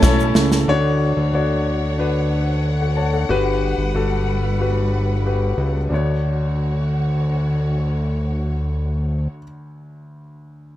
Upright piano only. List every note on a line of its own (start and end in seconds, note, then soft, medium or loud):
0.00 0.31 A2 medium
0.00 0.02 C#4 medium
0.00 0.53 C#4 medium
0.00 0.03 E4 medium
0.00 0.54 E4 medium
0.00 0.03 A4 medium
0.00 0.54 A4 medium
0.00 0.03 C#5 loud
0.00 0.54 C#5 loud
0.68 1.62 D3 medium
0.68 1.19 D4 medium
0.68 1.19 F#4 medium
0.68 1.20 C#5 loud
1.33 1.84 D4 medium
1.33 1.85 F#4 medium
1.33 1.85 C#5 medium
1.98 2.49 D4 medium
1.98 2.50 F#4 medium
1.98 2.50 B4 medium
2.81 2.97 A4 soft
2.81 2.96 F#5 soft
2.97 3.13 C#5 medium
2.97 3.12 A5 medium
3.13 3.44 A4 soft
3.13 3.44 F#5 medium
3.29 4.24 G2 medium
3.29 3.80 F#4 medium
3.29 3.81 G4 medium
3.29 3.81 B4 loud
3.95 4.46 F#4 medium
3.95 4.46 G4 medium
3.95 4.46 A4 medium
4.60 5.11 F#4 medium
4.60 5.12 G4 medium
4.60 5.12 B4 medium
5.26 5.77 F#4 medium
5.26 5.77 G4 medium
5.26 5.77 B4 medium
5.89 9.42 D2 medium
5.89 9.39 D4 medium
5.89 9.42 F#4 medium
5.94 9.44 C#5 medium